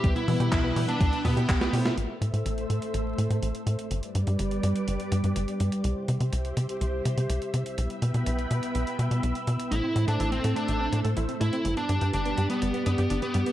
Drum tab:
HH |xxoxx-oxxxoxxxox|x-xxxxxxx-xxxxxx|xxxxxxxxxxxxxxxx|x-xxxxxxx-xxxxxx|
CP |----x-------x---|----------------|----------------|----------------|
SD |-------------o-o|----------------|----------------|----------------|
T1 |--o---o---------|----------------|----------------|----------------|
BD |o---o---o-o-o---|----------------|----------------|----------------|

HH |xxxxxxxxxxxxxxxx|x-xxxxxxx-xxxxxx|xxxxxxxxxxxxxxxx|
CP |----------------|----------------|----------------|
SD |----------------|----------------|----------------|
T1 |----------------|----------------|----------------|
BD |----------------|----------------|----------------|